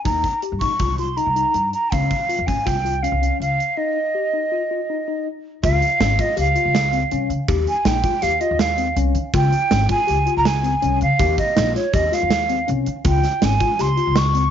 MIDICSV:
0, 0, Header, 1, 5, 480
1, 0, Start_track
1, 0, Tempo, 371058
1, 74, Time_signature, 5, 2, 24, 8
1, 18764, End_track
2, 0, Start_track
2, 0, Title_t, "Flute"
2, 0, Program_c, 0, 73
2, 57, Note_on_c, 0, 82, 74
2, 513, Note_off_c, 0, 82, 0
2, 777, Note_on_c, 0, 85, 86
2, 1234, Note_off_c, 0, 85, 0
2, 1277, Note_on_c, 0, 84, 70
2, 1511, Note_on_c, 0, 82, 77
2, 1530, Note_off_c, 0, 84, 0
2, 2231, Note_off_c, 0, 82, 0
2, 2238, Note_on_c, 0, 82, 70
2, 2487, Note_on_c, 0, 77, 76
2, 2507, Note_off_c, 0, 82, 0
2, 3188, Note_on_c, 0, 80, 72
2, 3207, Note_off_c, 0, 77, 0
2, 3439, Note_on_c, 0, 79, 74
2, 3459, Note_off_c, 0, 80, 0
2, 3913, Note_on_c, 0, 77, 70
2, 3933, Note_off_c, 0, 79, 0
2, 4399, Note_off_c, 0, 77, 0
2, 4405, Note_on_c, 0, 77, 73
2, 4875, Note_on_c, 0, 75, 64
2, 4894, Note_off_c, 0, 77, 0
2, 6802, Note_off_c, 0, 75, 0
2, 7285, Note_on_c, 0, 77, 93
2, 8024, Note_on_c, 0, 75, 82
2, 8043, Note_off_c, 0, 77, 0
2, 8255, Note_off_c, 0, 75, 0
2, 8265, Note_on_c, 0, 77, 84
2, 9403, Note_off_c, 0, 77, 0
2, 9942, Note_on_c, 0, 80, 83
2, 10174, Note_on_c, 0, 79, 85
2, 10193, Note_off_c, 0, 80, 0
2, 10636, Note_on_c, 0, 77, 83
2, 10655, Note_off_c, 0, 79, 0
2, 10873, Note_on_c, 0, 75, 73
2, 10893, Note_off_c, 0, 77, 0
2, 11118, Note_on_c, 0, 77, 74
2, 11138, Note_off_c, 0, 75, 0
2, 11601, Note_off_c, 0, 77, 0
2, 12106, Note_on_c, 0, 79, 96
2, 12764, Note_off_c, 0, 79, 0
2, 12819, Note_on_c, 0, 80, 99
2, 13368, Note_off_c, 0, 80, 0
2, 13414, Note_on_c, 0, 82, 95
2, 13534, Note_on_c, 0, 80, 91
2, 13553, Note_off_c, 0, 82, 0
2, 14247, Note_off_c, 0, 80, 0
2, 14257, Note_on_c, 0, 77, 86
2, 14695, Note_off_c, 0, 77, 0
2, 14729, Note_on_c, 0, 75, 79
2, 15171, Note_off_c, 0, 75, 0
2, 15202, Note_on_c, 0, 73, 80
2, 15448, Note_on_c, 0, 75, 74
2, 15468, Note_off_c, 0, 73, 0
2, 15695, Note_on_c, 0, 77, 75
2, 15715, Note_off_c, 0, 75, 0
2, 16406, Note_off_c, 0, 77, 0
2, 16913, Note_on_c, 0, 79, 74
2, 17391, Note_on_c, 0, 80, 76
2, 17410, Note_off_c, 0, 79, 0
2, 17860, Note_on_c, 0, 84, 85
2, 17880, Note_off_c, 0, 80, 0
2, 18338, Note_on_c, 0, 85, 88
2, 18357, Note_off_c, 0, 84, 0
2, 18764, Note_off_c, 0, 85, 0
2, 18764, End_track
3, 0, Start_track
3, 0, Title_t, "Tine electric piano"
3, 0, Program_c, 1, 4
3, 65, Note_on_c, 1, 63, 63
3, 324, Note_off_c, 1, 63, 0
3, 552, Note_on_c, 1, 67, 56
3, 681, Note_off_c, 1, 67, 0
3, 799, Note_on_c, 1, 63, 60
3, 926, Note_off_c, 1, 63, 0
3, 1042, Note_on_c, 1, 65, 54
3, 1169, Note_off_c, 1, 65, 0
3, 1281, Note_on_c, 1, 65, 58
3, 1408, Note_off_c, 1, 65, 0
3, 1514, Note_on_c, 1, 63, 67
3, 1644, Note_off_c, 1, 63, 0
3, 1755, Note_on_c, 1, 63, 62
3, 2013, Note_off_c, 1, 63, 0
3, 2486, Note_on_c, 1, 61, 64
3, 2741, Note_off_c, 1, 61, 0
3, 2963, Note_on_c, 1, 65, 62
3, 3091, Note_off_c, 1, 65, 0
3, 3194, Note_on_c, 1, 61, 58
3, 3325, Note_off_c, 1, 61, 0
3, 3440, Note_on_c, 1, 65, 59
3, 3569, Note_off_c, 1, 65, 0
3, 3682, Note_on_c, 1, 65, 59
3, 3810, Note_off_c, 1, 65, 0
3, 3920, Note_on_c, 1, 61, 71
3, 4049, Note_off_c, 1, 61, 0
3, 4165, Note_on_c, 1, 61, 59
3, 4421, Note_off_c, 1, 61, 0
3, 4884, Note_on_c, 1, 63, 66
3, 5141, Note_off_c, 1, 63, 0
3, 5365, Note_on_c, 1, 67, 58
3, 5493, Note_off_c, 1, 67, 0
3, 5606, Note_on_c, 1, 63, 58
3, 5734, Note_off_c, 1, 63, 0
3, 5844, Note_on_c, 1, 65, 60
3, 5973, Note_off_c, 1, 65, 0
3, 6090, Note_on_c, 1, 65, 58
3, 6218, Note_off_c, 1, 65, 0
3, 6333, Note_on_c, 1, 63, 63
3, 6460, Note_off_c, 1, 63, 0
3, 6568, Note_on_c, 1, 63, 58
3, 6824, Note_off_c, 1, 63, 0
3, 7286, Note_on_c, 1, 65, 70
3, 7542, Note_off_c, 1, 65, 0
3, 7767, Note_on_c, 1, 61, 70
3, 7895, Note_off_c, 1, 61, 0
3, 8008, Note_on_c, 1, 65, 61
3, 8136, Note_off_c, 1, 65, 0
3, 8235, Note_on_c, 1, 67, 66
3, 8366, Note_off_c, 1, 67, 0
3, 8478, Note_on_c, 1, 65, 66
3, 8736, Note_off_c, 1, 65, 0
3, 8961, Note_on_c, 1, 60, 66
3, 9090, Note_off_c, 1, 60, 0
3, 9208, Note_on_c, 1, 61, 74
3, 9463, Note_off_c, 1, 61, 0
3, 9684, Note_on_c, 1, 67, 76
3, 9940, Note_off_c, 1, 67, 0
3, 10159, Note_on_c, 1, 63, 72
3, 10289, Note_off_c, 1, 63, 0
3, 10403, Note_on_c, 1, 65, 70
3, 10531, Note_off_c, 1, 65, 0
3, 10641, Note_on_c, 1, 67, 71
3, 10770, Note_off_c, 1, 67, 0
3, 10879, Note_on_c, 1, 65, 68
3, 11136, Note_off_c, 1, 65, 0
3, 11358, Note_on_c, 1, 60, 69
3, 11487, Note_off_c, 1, 60, 0
3, 11597, Note_on_c, 1, 61, 80
3, 11855, Note_off_c, 1, 61, 0
3, 12082, Note_on_c, 1, 65, 79
3, 12338, Note_off_c, 1, 65, 0
3, 12559, Note_on_c, 1, 61, 72
3, 12688, Note_off_c, 1, 61, 0
3, 12794, Note_on_c, 1, 65, 67
3, 12924, Note_off_c, 1, 65, 0
3, 13031, Note_on_c, 1, 67, 73
3, 13162, Note_off_c, 1, 67, 0
3, 13276, Note_on_c, 1, 65, 74
3, 13533, Note_off_c, 1, 65, 0
3, 13753, Note_on_c, 1, 60, 69
3, 13883, Note_off_c, 1, 60, 0
3, 13997, Note_on_c, 1, 61, 80
3, 14254, Note_off_c, 1, 61, 0
3, 14480, Note_on_c, 1, 67, 81
3, 14736, Note_off_c, 1, 67, 0
3, 14955, Note_on_c, 1, 63, 74
3, 15084, Note_off_c, 1, 63, 0
3, 15195, Note_on_c, 1, 65, 68
3, 15324, Note_off_c, 1, 65, 0
3, 15438, Note_on_c, 1, 67, 68
3, 15566, Note_off_c, 1, 67, 0
3, 15680, Note_on_c, 1, 65, 65
3, 15935, Note_off_c, 1, 65, 0
3, 16160, Note_on_c, 1, 60, 74
3, 16287, Note_off_c, 1, 60, 0
3, 16401, Note_on_c, 1, 61, 73
3, 16656, Note_off_c, 1, 61, 0
3, 16876, Note_on_c, 1, 65, 76
3, 17132, Note_off_c, 1, 65, 0
3, 17353, Note_on_c, 1, 61, 74
3, 17482, Note_off_c, 1, 61, 0
3, 17598, Note_on_c, 1, 65, 72
3, 17726, Note_off_c, 1, 65, 0
3, 17842, Note_on_c, 1, 67, 70
3, 17968, Note_off_c, 1, 67, 0
3, 18072, Note_on_c, 1, 65, 67
3, 18328, Note_off_c, 1, 65, 0
3, 18558, Note_on_c, 1, 60, 70
3, 18685, Note_off_c, 1, 60, 0
3, 18764, End_track
4, 0, Start_track
4, 0, Title_t, "Upright bass"
4, 0, Program_c, 2, 32
4, 75, Note_on_c, 2, 39, 68
4, 285, Note_off_c, 2, 39, 0
4, 672, Note_on_c, 2, 43, 65
4, 779, Note_off_c, 2, 43, 0
4, 799, Note_on_c, 2, 34, 64
4, 903, Note_off_c, 2, 34, 0
4, 1032, Note_on_c, 2, 36, 67
4, 1560, Note_off_c, 2, 36, 0
4, 1634, Note_on_c, 2, 36, 69
4, 1846, Note_off_c, 2, 36, 0
4, 1997, Note_on_c, 2, 43, 69
4, 2208, Note_off_c, 2, 43, 0
4, 2489, Note_on_c, 2, 37, 75
4, 2695, Note_off_c, 2, 37, 0
4, 3087, Note_on_c, 2, 41, 75
4, 3190, Note_off_c, 2, 41, 0
4, 3216, Note_on_c, 2, 32, 61
4, 3315, Note_off_c, 2, 32, 0
4, 3456, Note_on_c, 2, 36, 70
4, 3976, Note_off_c, 2, 36, 0
4, 4034, Note_on_c, 2, 36, 78
4, 4249, Note_off_c, 2, 36, 0
4, 4397, Note_on_c, 2, 37, 66
4, 4611, Note_off_c, 2, 37, 0
4, 7290, Note_on_c, 2, 37, 91
4, 7498, Note_off_c, 2, 37, 0
4, 7764, Note_on_c, 2, 32, 93
4, 7975, Note_off_c, 2, 32, 0
4, 8242, Note_on_c, 2, 37, 81
4, 8454, Note_off_c, 2, 37, 0
4, 8605, Note_on_c, 2, 37, 73
4, 9129, Note_off_c, 2, 37, 0
4, 9207, Note_on_c, 2, 36, 70
4, 9416, Note_off_c, 2, 36, 0
4, 9439, Note_on_c, 2, 49, 72
4, 9547, Note_off_c, 2, 49, 0
4, 9685, Note_on_c, 2, 39, 86
4, 9895, Note_off_c, 2, 39, 0
4, 10156, Note_on_c, 2, 34, 94
4, 10370, Note_off_c, 2, 34, 0
4, 10650, Note_on_c, 2, 39, 80
4, 10857, Note_off_c, 2, 39, 0
4, 11007, Note_on_c, 2, 39, 72
4, 11529, Note_off_c, 2, 39, 0
4, 11594, Note_on_c, 2, 36, 79
4, 11808, Note_off_c, 2, 36, 0
4, 11833, Note_on_c, 2, 51, 76
4, 11942, Note_off_c, 2, 51, 0
4, 12081, Note_on_c, 2, 37, 101
4, 12291, Note_off_c, 2, 37, 0
4, 12564, Note_on_c, 2, 32, 106
4, 12773, Note_off_c, 2, 32, 0
4, 13049, Note_on_c, 2, 37, 83
4, 13255, Note_off_c, 2, 37, 0
4, 13410, Note_on_c, 2, 37, 75
4, 13930, Note_off_c, 2, 37, 0
4, 14008, Note_on_c, 2, 36, 81
4, 14214, Note_off_c, 2, 36, 0
4, 14250, Note_on_c, 2, 49, 84
4, 14351, Note_off_c, 2, 49, 0
4, 14480, Note_on_c, 2, 39, 101
4, 14689, Note_off_c, 2, 39, 0
4, 14973, Note_on_c, 2, 34, 102
4, 15176, Note_off_c, 2, 34, 0
4, 15441, Note_on_c, 2, 39, 77
4, 15650, Note_off_c, 2, 39, 0
4, 15820, Note_on_c, 2, 39, 75
4, 16334, Note_off_c, 2, 39, 0
4, 16417, Note_on_c, 2, 36, 83
4, 16618, Note_off_c, 2, 36, 0
4, 16649, Note_on_c, 2, 51, 73
4, 16749, Note_off_c, 2, 51, 0
4, 16883, Note_on_c, 2, 37, 97
4, 17090, Note_off_c, 2, 37, 0
4, 17371, Note_on_c, 2, 32, 95
4, 17574, Note_off_c, 2, 32, 0
4, 17850, Note_on_c, 2, 37, 77
4, 18053, Note_off_c, 2, 37, 0
4, 18202, Note_on_c, 2, 37, 81
4, 18723, Note_off_c, 2, 37, 0
4, 18764, End_track
5, 0, Start_track
5, 0, Title_t, "Drums"
5, 69, Note_on_c, 9, 36, 88
5, 73, Note_on_c, 9, 42, 64
5, 199, Note_off_c, 9, 36, 0
5, 202, Note_off_c, 9, 42, 0
5, 309, Note_on_c, 9, 36, 55
5, 314, Note_on_c, 9, 42, 48
5, 438, Note_off_c, 9, 36, 0
5, 443, Note_off_c, 9, 42, 0
5, 549, Note_on_c, 9, 42, 71
5, 678, Note_off_c, 9, 42, 0
5, 792, Note_on_c, 9, 36, 64
5, 795, Note_on_c, 9, 42, 51
5, 921, Note_off_c, 9, 36, 0
5, 924, Note_off_c, 9, 42, 0
5, 1026, Note_on_c, 9, 42, 59
5, 1032, Note_on_c, 9, 36, 82
5, 1156, Note_off_c, 9, 42, 0
5, 1161, Note_off_c, 9, 36, 0
5, 1273, Note_on_c, 9, 42, 48
5, 1402, Note_off_c, 9, 42, 0
5, 1521, Note_on_c, 9, 42, 57
5, 1650, Note_off_c, 9, 42, 0
5, 1764, Note_on_c, 9, 42, 49
5, 1893, Note_off_c, 9, 42, 0
5, 1996, Note_on_c, 9, 42, 62
5, 2125, Note_off_c, 9, 42, 0
5, 2242, Note_on_c, 9, 42, 48
5, 2371, Note_off_c, 9, 42, 0
5, 2486, Note_on_c, 9, 42, 59
5, 2487, Note_on_c, 9, 36, 85
5, 2616, Note_off_c, 9, 42, 0
5, 2617, Note_off_c, 9, 36, 0
5, 2725, Note_on_c, 9, 42, 46
5, 2727, Note_on_c, 9, 36, 58
5, 2855, Note_off_c, 9, 42, 0
5, 2856, Note_off_c, 9, 36, 0
5, 2970, Note_on_c, 9, 42, 69
5, 3099, Note_off_c, 9, 42, 0
5, 3209, Note_on_c, 9, 36, 65
5, 3218, Note_on_c, 9, 42, 51
5, 3338, Note_off_c, 9, 36, 0
5, 3347, Note_off_c, 9, 42, 0
5, 3450, Note_on_c, 9, 36, 81
5, 3458, Note_on_c, 9, 42, 64
5, 3579, Note_off_c, 9, 36, 0
5, 3587, Note_off_c, 9, 42, 0
5, 3697, Note_on_c, 9, 42, 50
5, 3827, Note_off_c, 9, 42, 0
5, 3935, Note_on_c, 9, 42, 68
5, 4064, Note_off_c, 9, 42, 0
5, 4178, Note_on_c, 9, 42, 55
5, 4307, Note_off_c, 9, 42, 0
5, 4420, Note_on_c, 9, 42, 64
5, 4550, Note_off_c, 9, 42, 0
5, 4660, Note_on_c, 9, 42, 51
5, 4789, Note_off_c, 9, 42, 0
5, 7290, Note_on_c, 9, 36, 100
5, 7291, Note_on_c, 9, 42, 77
5, 7420, Note_off_c, 9, 36, 0
5, 7421, Note_off_c, 9, 42, 0
5, 7531, Note_on_c, 9, 42, 57
5, 7661, Note_off_c, 9, 42, 0
5, 7769, Note_on_c, 9, 38, 105
5, 7769, Note_on_c, 9, 42, 79
5, 7898, Note_off_c, 9, 38, 0
5, 7898, Note_off_c, 9, 42, 0
5, 8006, Note_on_c, 9, 36, 67
5, 8007, Note_on_c, 9, 42, 60
5, 8135, Note_off_c, 9, 36, 0
5, 8136, Note_off_c, 9, 42, 0
5, 8241, Note_on_c, 9, 42, 78
5, 8371, Note_off_c, 9, 42, 0
5, 8481, Note_on_c, 9, 42, 56
5, 8611, Note_off_c, 9, 42, 0
5, 8728, Note_on_c, 9, 38, 90
5, 8728, Note_on_c, 9, 42, 67
5, 8857, Note_off_c, 9, 38, 0
5, 8857, Note_off_c, 9, 42, 0
5, 8964, Note_on_c, 9, 42, 58
5, 9094, Note_off_c, 9, 42, 0
5, 9203, Note_on_c, 9, 42, 67
5, 9332, Note_off_c, 9, 42, 0
5, 9445, Note_on_c, 9, 42, 56
5, 9575, Note_off_c, 9, 42, 0
5, 9682, Note_on_c, 9, 36, 99
5, 9682, Note_on_c, 9, 42, 74
5, 9811, Note_off_c, 9, 36, 0
5, 9811, Note_off_c, 9, 42, 0
5, 9923, Note_on_c, 9, 42, 51
5, 10053, Note_off_c, 9, 42, 0
5, 10158, Note_on_c, 9, 38, 98
5, 10158, Note_on_c, 9, 42, 73
5, 10287, Note_off_c, 9, 38, 0
5, 10287, Note_off_c, 9, 42, 0
5, 10395, Note_on_c, 9, 42, 55
5, 10397, Note_on_c, 9, 36, 72
5, 10525, Note_off_c, 9, 42, 0
5, 10526, Note_off_c, 9, 36, 0
5, 10636, Note_on_c, 9, 38, 31
5, 10636, Note_on_c, 9, 42, 77
5, 10765, Note_off_c, 9, 38, 0
5, 10765, Note_off_c, 9, 42, 0
5, 10877, Note_on_c, 9, 42, 60
5, 11007, Note_off_c, 9, 42, 0
5, 11116, Note_on_c, 9, 38, 91
5, 11116, Note_on_c, 9, 42, 74
5, 11246, Note_off_c, 9, 38, 0
5, 11246, Note_off_c, 9, 42, 0
5, 11358, Note_on_c, 9, 42, 61
5, 11487, Note_off_c, 9, 42, 0
5, 11598, Note_on_c, 9, 42, 73
5, 11728, Note_off_c, 9, 42, 0
5, 11834, Note_on_c, 9, 42, 59
5, 11963, Note_off_c, 9, 42, 0
5, 12078, Note_on_c, 9, 36, 101
5, 12083, Note_on_c, 9, 42, 79
5, 12207, Note_off_c, 9, 36, 0
5, 12212, Note_off_c, 9, 42, 0
5, 12321, Note_on_c, 9, 42, 58
5, 12450, Note_off_c, 9, 42, 0
5, 12560, Note_on_c, 9, 38, 111
5, 12560, Note_on_c, 9, 42, 88
5, 12689, Note_off_c, 9, 38, 0
5, 12689, Note_off_c, 9, 42, 0
5, 12791, Note_on_c, 9, 42, 58
5, 12796, Note_on_c, 9, 36, 74
5, 12921, Note_off_c, 9, 42, 0
5, 12926, Note_off_c, 9, 36, 0
5, 13040, Note_on_c, 9, 42, 76
5, 13169, Note_off_c, 9, 42, 0
5, 13282, Note_on_c, 9, 42, 54
5, 13411, Note_off_c, 9, 42, 0
5, 13522, Note_on_c, 9, 38, 97
5, 13522, Note_on_c, 9, 42, 64
5, 13652, Note_off_c, 9, 38, 0
5, 13652, Note_off_c, 9, 42, 0
5, 13767, Note_on_c, 9, 42, 57
5, 13896, Note_off_c, 9, 42, 0
5, 14002, Note_on_c, 9, 42, 70
5, 14132, Note_off_c, 9, 42, 0
5, 14243, Note_on_c, 9, 42, 54
5, 14372, Note_off_c, 9, 42, 0
5, 14481, Note_on_c, 9, 36, 101
5, 14489, Note_on_c, 9, 42, 74
5, 14611, Note_off_c, 9, 36, 0
5, 14618, Note_off_c, 9, 42, 0
5, 14723, Note_on_c, 9, 36, 69
5, 14729, Note_on_c, 9, 42, 55
5, 14852, Note_off_c, 9, 36, 0
5, 14859, Note_off_c, 9, 42, 0
5, 14962, Note_on_c, 9, 38, 103
5, 14962, Note_on_c, 9, 42, 81
5, 15092, Note_off_c, 9, 38, 0
5, 15092, Note_off_c, 9, 42, 0
5, 15214, Note_on_c, 9, 38, 32
5, 15214, Note_on_c, 9, 42, 57
5, 15343, Note_off_c, 9, 38, 0
5, 15343, Note_off_c, 9, 42, 0
5, 15437, Note_on_c, 9, 42, 76
5, 15441, Note_on_c, 9, 36, 96
5, 15567, Note_off_c, 9, 42, 0
5, 15570, Note_off_c, 9, 36, 0
5, 15692, Note_on_c, 9, 38, 35
5, 15692, Note_on_c, 9, 42, 60
5, 15822, Note_off_c, 9, 38, 0
5, 15822, Note_off_c, 9, 42, 0
5, 15918, Note_on_c, 9, 38, 92
5, 15918, Note_on_c, 9, 42, 74
5, 16047, Note_off_c, 9, 38, 0
5, 16047, Note_off_c, 9, 42, 0
5, 16162, Note_on_c, 9, 42, 61
5, 16292, Note_off_c, 9, 42, 0
5, 16405, Note_on_c, 9, 42, 77
5, 16535, Note_off_c, 9, 42, 0
5, 16641, Note_on_c, 9, 42, 61
5, 16770, Note_off_c, 9, 42, 0
5, 16877, Note_on_c, 9, 42, 73
5, 16880, Note_on_c, 9, 36, 94
5, 17006, Note_off_c, 9, 42, 0
5, 17009, Note_off_c, 9, 36, 0
5, 17122, Note_on_c, 9, 38, 29
5, 17122, Note_on_c, 9, 42, 59
5, 17251, Note_off_c, 9, 38, 0
5, 17251, Note_off_c, 9, 42, 0
5, 17359, Note_on_c, 9, 38, 106
5, 17359, Note_on_c, 9, 42, 80
5, 17488, Note_off_c, 9, 38, 0
5, 17488, Note_off_c, 9, 42, 0
5, 17598, Note_on_c, 9, 42, 55
5, 17599, Note_on_c, 9, 36, 77
5, 17728, Note_off_c, 9, 36, 0
5, 17728, Note_off_c, 9, 42, 0
5, 17841, Note_on_c, 9, 38, 33
5, 17841, Note_on_c, 9, 42, 75
5, 17970, Note_off_c, 9, 38, 0
5, 17970, Note_off_c, 9, 42, 0
5, 18078, Note_on_c, 9, 42, 54
5, 18207, Note_off_c, 9, 42, 0
5, 18312, Note_on_c, 9, 38, 103
5, 18312, Note_on_c, 9, 42, 69
5, 18442, Note_off_c, 9, 38, 0
5, 18442, Note_off_c, 9, 42, 0
5, 18560, Note_on_c, 9, 42, 59
5, 18690, Note_off_c, 9, 42, 0
5, 18764, End_track
0, 0, End_of_file